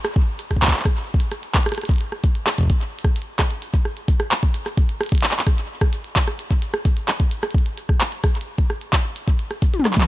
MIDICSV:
0, 0, Header, 1, 2, 480
1, 0, Start_track
1, 0, Tempo, 461538
1, 886, Time_signature, 4, 2, 24, 8
1, 10473, End_track
2, 0, Start_track
2, 0, Title_t, "Drums"
2, 47, Note_on_c, 9, 37, 81
2, 47, Note_on_c, 9, 42, 39
2, 151, Note_off_c, 9, 37, 0
2, 151, Note_off_c, 9, 42, 0
2, 167, Note_on_c, 9, 36, 127
2, 271, Note_off_c, 9, 36, 0
2, 407, Note_on_c, 9, 42, 92
2, 511, Note_off_c, 9, 42, 0
2, 527, Note_on_c, 9, 36, 51
2, 528, Note_on_c, 9, 37, 51
2, 528, Note_on_c, 9, 42, 43
2, 587, Note_off_c, 9, 36, 0
2, 587, Note_on_c, 9, 36, 65
2, 632, Note_off_c, 9, 37, 0
2, 632, Note_off_c, 9, 42, 0
2, 647, Note_off_c, 9, 36, 0
2, 647, Note_on_c, 9, 36, 77
2, 647, Note_on_c, 9, 39, 123
2, 647, Note_on_c, 9, 42, 72
2, 678, Note_off_c, 9, 39, 0
2, 678, Note_on_c, 9, 39, 102
2, 707, Note_off_c, 9, 36, 0
2, 707, Note_on_c, 9, 36, 95
2, 708, Note_off_c, 9, 39, 0
2, 708, Note_on_c, 9, 39, 82
2, 738, Note_off_c, 9, 39, 0
2, 738, Note_on_c, 9, 39, 72
2, 751, Note_off_c, 9, 42, 0
2, 769, Note_off_c, 9, 39, 0
2, 769, Note_on_c, 9, 39, 59
2, 799, Note_off_c, 9, 39, 0
2, 799, Note_on_c, 9, 39, 45
2, 811, Note_off_c, 9, 36, 0
2, 829, Note_off_c, 9, 39, 0
2, 829, Note_on_c, 9, 39, 38
2, 860, Note_off_c, 9, 39, 0
2, 860, Note_on_c, 9, 39, 31
2, 887, Note_on_c, 9, 36, 122
2, 890, Note_on_c, 9, 37, 72
2, 890, Note_on_c, 9, 42, 94
2, 964, Note_off_c, 9, 39, 0
2, 991, Note_off_c, 9, 36, 0
2, 994, Note_off_c, 9, 37, 0
2, 994, Note_off_c, 9, 42, 0
2, 1187, Note_on_c, 9, 36, 113
2, 1248, Note_on_c, 9, 42, 72
2, 1291, Note_off_c, 9, 36, 0
2, 1352, Note_off_c, 9, 42, 0
2, 1368, Note_on_c, 9, 37, 52
2, 1368, Note_on_c, 9, 42, 87
2, 1472, Note_off_c, 9, 37, 0
2, 1472, Note_off_c, 9, 42, 0
2, 1488, Note_on_c, 9, 42, 40
2, 1592, Note_off_c, 9, 42, 0
2, 1606, Note_on_c, 9, 36, 125
2, 1608, Note_on_c, 9, 39, 118
2, 1608, Note_on_c, 9, 42, 30
2, 1637, Note_off_c, 9, 42, 0
2, 1637, Note_on_c, 9, 42, 33
2, 1668, Note_off_c, 9, 42, 0
2, 1668, Note_on_c, 9, 42, 38
2, 1697, Note_off_c, 9, 42, 0
2, 1697, Note_on_c, 9, 42, 41
2, 1710, Note_off_c, 9, 36, 0
2, 1712, Note_off_c, 9, 39, 0
2, 1728, Note_off_c, 9, 42, 0
2, 1728, Note_on_c, 9, 37, 76
2, 1728, Note_on_c, 9, 42, 47
2, 1758, Note_off_c, 9, 42, 0
2, 1758, Note_on_c, 9, 42, 54
2, 1788, Note_off_c, 9, 37, 0
2, 1788, Note_off_c, 9, 42, 0
2, 1788, Note_on_c, 9, 37, 63
2, 1788, Note_on_c, 9, 42, 55
2, 1807, Note_off_c, 9, 42, 0
2, 1807, Note_on_c, 9, 42, 31
2, 1818, Note_off_c, 9, 42, 0
2, 1818, Note_on_c, 9, 42, 64
2, 1848, Note_off_c, 9, 37, 0
2, 1848, Note_off_c, 9, 42, 0
2, 1848, Note_on_c, 9, 37, 51
2, 1848, Note_on_c, 9, 42, 42
2, 1888, Note_off_c, 9, 42, 0
2, 1888, Note_on_c, 9, 42, 55
2, 1908, Note_off_c, 9, 37, 0
2, 1908, Note_on_c, 9, 37, 38
2, 1927, Note_off_c, 9, 42, 0
2, 1927, Note_on_c, 9, 42, 69
2, 1967, Note_on_c, 9, 36, 115
2, 1968, Note_off_c, 9, 42, 0
2, 1968, Note_on_c, 9, 42, 18
2, 1991, Note_off_c, 9, 42, 0
2, 1991, Note_on_c, 9, 42, 23
2, 2012, Note_off_c, 9, 37, 0
2, 2015, Note_off_c, 9, 42, 0
2, 2015, Note_on_c, 9, 42, 26
2, 2039, Note_off_c, 9, 42, 0
2, 2039, Note_on_c, 9, 42, 31
2, 2063, Note_off_c, 9, 42, 0
2, 2063, Note_on_c, 9, 42, 34
2, 2071, Note_off_c, 9, 36, 0
2, 2087, Note_off_c, 9, 42, 0
2, 2087, Note_on_c, 9, 42, 41
2, 2191, Note_off_c, 9, 42, 0
2, 2207, Note_on_c, 9, 37, 51
2, 2311, Note_off_c, 9, 37, 0
2, 2326, Note_on_c, 9, 42, 87
2, 2327, Note_on_c, 9, 36, 127
2, 2430, Note_off_c, 9, 42, 0
2, 2431, Note_off_c, 9, 36, 0
2, 2446, Note_on_c, 9, 42, 40
2, 2550, Note_off_c, 9, 42, 0
2, 2566, Note_on_c, 9, 37, 78
2, 2566, Note_on_c, 9, 39, 127
2, 2670, Note_off_c, 9, 37, 0
2, 2670, Note_off_c, 9, 39, 0
2, 2686, Note_on_c, 9, 42, 67
2, 2687, Note_on_c, 9, 36, 102
2, 2711, Note_off_c, 9, 36, 0
2, 2711, Note_on_c, 9, 36, 87
2, 2735, Note_off_c, 9, 36, 0
2, 2735, Note_on_c, 9, 36, 69
2, 2759, Note_off_c, 9, 36, 0
2, 2759, Note_on_c, 9, 36, 55
2, 2783, Note_off_c, 9, 36, 0
2, 2783, Note_on_c, 9, 36, 47
2, 2790, Note_off_c, 9, 42, 0
2, 2806, Note_on_c, 9, 42, 84
2, 2807, Note_off_c, 9, 36, 0
2, 2807, Note_on_c, 9, 36, 116
2, 2910, Note_off_c, 9, 42, 0
2, 2911, Note_off_c, 9, 36, 0
2, 2926, Note_on_c, 9, 42, 38
2, 3030, Note_off_c, 9, 42, 0
2, 3106, Note_on_c, 9, 42, 68
2, 3166, Note_on_c, 9, 36, 108
2, 3167, Note_off_c, 9, 42, 0
2, 3167, Note_on_c, 9, 37, 55
2, 3167, Note_on_c, 9, 42, 41
2, 3270, Note_off_c, 9, 36, 0
2, 3271, Note_off_c, 9, 37, 0
2, 3271, Note_off_c, 9, 42, 0
2, 3287, Note_on_c, 9, 42, 88
2, 3347, Note_off_c, 9, 42, 0
2, 3347, Note_on_c, 9, 42, 36
2, 3451, Note_off_c, 9, 42, 0
2, 3526, Note_on_c, 9, 36, 119
2, 3527, Note_on_c, 9, 37, 81
2, 3527, Note_on_c, 9, 39, 124
2, 3527, Note_on_c, 9, 42, 68
2, 3630, Note_off_c, 9, 36, 0
2, 3631, Note_off_c, 9, 37, 0
2, 3631, Note_off_c, 9, 39, 0
2, 3631, Note_off_c, 9, 42, 0
2, 3646, Note_on_c, 9, 42, 41
2, 3750, Note_off_c, 9, 42, 0
2, 3766, Note_on_c, 9, 42, 89
2, 3870, Note_off_c, 9, 42, 0
2, 3886, Note_on_c, 9, 36, 113
2, 3887, Note_on_c, 9, 42, 37
2, 3990, Note_off_c, 9, 36, 0
2, 3991, Note_off_c, 9, 42, 0
2, 4006, Note_on_c, 9, 37, 53
2, 4110, Note_off_c, 9, 37, 0
2, 4127, Note_on_c, 9, 42, 38
2, 4231, Note_off_c, 9, 42, 0
2, 4245, Note_on_c, 9, 36, 125
2, 4247, Note_on_c, 9, 42, 84
2, 4349, Note_off_c, 9, 36, 0
2, 4351, Note_off_c, 9, 42, 0
2, 4366, Note_on_c, 9, 37, 75
2, 4366, Note_on_c, 9, 42, 37
2, 4470, Note_off_c, 9, 37, 0
2, 4470, Note_off_c, 9, 42, 0
2, 4486, Note_on_c, 9, 39, 123
2, 4486, Note_on_c, 9, 42, 67
2, 4590, Note_off_c, 9, 39, 0
2, 4590, Note_off_c, 9, 42, 0
2, 4605, Note_on_c, 9, 36, 108
2, 4606, Note_on_c, 9, 42, 39
2, 4709, Note_off_c, 9, 36, 0
2, 4710, Note_off_c, 9, 42, 0
2, 4725, Note_on_c, 9, 42, 88
2, 4829, Note_off_c, 9, 42, 0
2, 4847, Note_on_c, 9, 37, 56
2, 4847, Note_on_c, 9, 42, 39
2, 4951, Note_off_c, 9, 37, 0
2, 4951, Note_off_c, 9, 42, 0
2, 4965, Note_on_c, 9, 36, 122
2, 4967, Note_on_c, 9, 42, 67
2, 5069, Note_off_c, 9, 36, 0
2, 5071, Note_off_c, 9, 42, 0
2, 5088, Note_on_c, 9, 42, 39
2, 5192, Note_off_c, 9, 42, 0
2, 5206, Note_on_c, 9, 37, 81
2, 5206, Note_on_c, 9, 42, 41
2, 5237, Note_off_c, 9, 42, 0
2, 5237, Note_on_c, 9, 42, 47
2, 5266, Note_off_c, 9, 42, 0
2, 5266, Note_on_c, 9, 42, 51
2, 5297, Note_off_c, 9, 42, 0
2, 5297, Note_on_c, 9, 42, 56
2, 5310, Note_off_c, 9, 37, 0
2, 5325, Note_on_c, 9, 36, 112
2, 5326, Note_off_c, 9, 42, 0
2, 5326, Note_on_c, 9, 42, 63
2, 5356, Note_off_c, 9, 42, 0
2, 5356, Note_on_c, 9, 42, 70
2, 5385, Note_off_c, 9, 42, 0
2, 5385, Note_on_c, 9, 42, 69
2, 5415, Note_off_c, 9, 42, 0
2, 5415, Note_on_c, 9, 42, 76
2, 5429, Note_off_c, 9, 36, 0
2, 5445, Note_off_c, 9, 42, 0
2, 5445, Note_on_c, 9, 39, 114
2, 5445, Note_on_c, 9, 42, 68
2, 5525, Note_off_c, 9, 39, 0
2, 5525, Note_on_c, 9, 39, 91
2, 5549, Note_off_c, 9, 42, 0
2, 5565, Note_on_c, 9, 42, 41
2, 5605, Note_off_c, 9, 39, 0
2, 5605, Note_on_c, 9, 39, 79
2, 5669, Note_off_c, 9, 42, 0
2, 5685, Note_on_c, 9, 36, 119
2, 5685, Note_on_c, 9, 37, 54
2, 5685, Note_on_c, 9, 42, 90
2, 5709, Note_off_c, 9, 39, 0
2, 5789, Note_off_c, 9, 36, 0
2, 5789, Note_off_c, 9, 37, 0
2, 5789, Note_off_c, 9, 42, 0
2, 5805, Note_on_c, 9, 42, 39
2, 5909, Note_off_c, 9, 42, 0
2, 6045, Note_on_c, 9, 36, 106
2, 6046, Note_on_c, 9, 37, 75
2, 6046, Note_on_c, 9, 42, 38
2, 6149, Note_off_c, 9, 36, 0
2, 6150, Note_off_c, 9, 37, 0
2, 6150, Note_off_c, 9, 42, 0
2, 6165, Note_on_c, 9, 42, 85
2, 6269, Note_off_c, 9, 42, 0
2, 6286, Note_on_c, 9, 42, 39
2, 6390, Note_off_c, 9, 42, 0
2, 6406, Note_on_c, 9, 36, 117
2, 6407, Note_on_c, 9, 39, 120
2, 6407, Note_on_c, 9, 42, 67
2, 6510, Note_off_c, 9, 36, 0
2, 6511, Note_off_c, 9, 39, 0
2, 6511, Note_off_c, 9, 42, 0
2, 6526, Note_on_c, 9, 37, 57
2, 6526, Note_on_c, 9, 42, 41
2, 6630, Note_off_c, 9, 37, 0
2, 6630, Note_off_c, 9, 42, 0
2, 6647, Note_on_c, 9, 42, 92
2, 6751, Note_off_c, 9, 42, 0
2, 6766, Note_on_c, 9, 36, 103
2, 6766, Note_on_c, 9, 42, 40
2, 6870, Note_off_c, 9, 36, 0
2, 6870, Note_off_c, 9, 42, 0
2, 6886, Note_on_c, 9, 42, 73
2, 6990, Note_off_c, 9, 42, 0
2, 7006, Note_on_c, 9, 37, 86
2, 7006, Note_on_c, 9, 42, 41
2, 7110, Note_off_c, 9, 37, 0
2, 7110, Note_off_c, 9, 42, 0
2, 7126, Note_on_c, 9, 36, 121
2, 7126, Note_on_c, 9, 42, 88
2, 7230, Note_off_c, 9, 36, 0
2, 7230, Note_off_c, 9, 42, 0
2, 7246, Note_on_c, 9, 42, 41
2, 7350, Note_off_c, 9, 42, 0
2, 7365, Note_on_c, 9, 37, 57
2, 7365, Note_on_c, 9, 39, 112
2, 7469, Note_off_c, 9, 37, 0
2, 7469, Note_off_c, 9, 39, 0
2, 7486, Note_on_c, 9, 36, 103
2, 7486, Note_on_c, 9, 42, 69
2, 7590, Note_off_c, 9, 36, 0
2, 7590, Note_off_c, 9, 42, 0
2, 7606, Note_on_c, 9, 42, 91
2, 7710, Note_off_c, 9, 42, 0
2, 7726, Note_on_c, 9, 37, 86
2, 7726, Note_on_c, 9, 42, 38
2, 7806, Note_off_c, 9, 42, 0
2, 7806, Note_on_c, 9, 42, 33
2, 7830, Note_off_c, 9, 37, 0
2, 7846, Note_on_c, 9, 36, 117
2, 7886, Note_off_c, 9, 42, 0
2, 7886, Note_on_c, 9, 42, 27
2, 7950, Note_off_c, 9, 36, 0
2, 7966, Note_off_c, 9, 42, 0
2, 7966, Note_on_c, 9, 42, 38
2, 8070, Note_off_c, 9, 42, 0
2, 8086, Note_on_c, 9, 42, 86
2, 8190, Note_off_c, 9, 42, 0
2, 8206, Note_on_c, 9, 36, 108
2, 8206, Note_on_c, 9, 37, 53
2, 8310, Note_off_c, 9, 36, 0
2, 8310, Note_off_c, 9, 37, 0
2, 8327, Note_on_c, 9, 39, 121
2, 8327, Note_on_c, 9, 42, 69
2, 8431, Note_off_c, 9, 39, 0
2, 8431, Note_off_c, 9, 42, 0
2, 8447, Note_on_c, 9, 42, 42
2, 8551, Note_off_c, 9, 42, 0
2, 8566, Note_on_c, 9, 36, 117
2, 8566, Note_on_c, 9, 37, 84
2, 8566, Note_on_c, 9, 42, 93
2, 8670, Note_off_c, 9, 36, 0
2, 8670, Note_off_c, 9, 37, 0
2, 8670, Note_off_c, 9, 42, 0
2, 8686, Note_on_c, 9, 42, 40
2, 8747, Note_off_c, 9, 42, 0
2, 8747, Note_on_c, 9, 42, 66
2, 8851, Note_off_c, 9, 42, 0
2, 8926, Note_on_c, 9, 36, 100
2, 8928, Note_on_c, 9, 42, 43
2, 9030, Note_off_c, 9, 36, 0
2, 9032, Note_off_c, 9, 42, 0
2, 9047, Note_on_c, 9, 37, 57
2, 9151, Note_off_c, 9, 37, 0
2, 9167, Note_on_c, 9, 42, 40
2, 9271, Note_off_c, 9, 42, 0
2, 9286, Note_on_c, 9, 36, 113
2, 9287, Note_on_c, 9, 39, 116
2, 9287, Note_on_c, 9, 42, 68
2, 9390, Note_off_c, 9, 36, 0
2, 9391, Note_off_c, 9, 39, 0
2, 9391, Note_off_c, 9, 42, 0
2, 9527, Note_on_c, 9, 42, 96
2, 9631, Note_off_c, 9, 42, 0
2, 9646, Note_on_c, 9, 36, 111
2, 9647, Note_on_c, 9, 42, 42
2, 9750, Note_off_c, 9, 36, 0
2, 9751, Note_off_c, 9, 42, 0
2, 9767, Note_on_c, 9, 42, 40
2, 9871, Note_off_c, 9, 42, 0
2, 9887, Note_on_c, 9, 37, 52
2, 9887, Note_on_c, 9, 42, 40
2, 9991, Note_off_c, 9, 37, 0
2, 9991, Note_off_c, 9, 42, 0
2, 10006, Note_on_c, 9, 36, 124
2, 10007, Note_on_c, 9, 42, 93
2, 10110, Note_off_c, 9, 36, 0
2, 10111, Note_off_c, 9, 42, 0
2, 10126, Note_on_c, 9, 42, 41
2, 10126, Note_on_c, 9, 48, 54
2, 10187, Note_on_c, 9, 47, 83
2, 10230, Note_off_c, 9, 42, 0
2, 10230, Note_off_c, 9, 48, 0
2, 10247, Note_on_c, 9, 37, 85
2, 10247, Note_on_c, 9, 39, 53
2, 10247, Note_on_c, 9, 42, 70
2, 10291, Note_off_c, 9, 47, 0
2, 10327, Note_off_c, 9, 39, 0
2, 10327, Note_on_c, 9, 39, 69
2, 10351, Note_off_c, 9, 37, 0
2, 10351, Note_off_c, 9, 42, 0
2, 10366, Note_on_c, 9, 36, 98
2, 10367, Note_on_c, 9, 42, 40
2, 10367, Note_on_c, 9, 45, 82
2, 10406, Note_off_c, 9, 39, 0
2, 10406, Note_on_c, 9, 39, 91
2, 10470, Note_off_c, 9, 36, 0
2, 10471, Note_off_c, 9, 42, 0
2, 10471, Note_off_c, 9, 45, 0
2, 10473, Note_off_c, 9, 39, 0
2, 10473, End_track
0, 0, End_of_file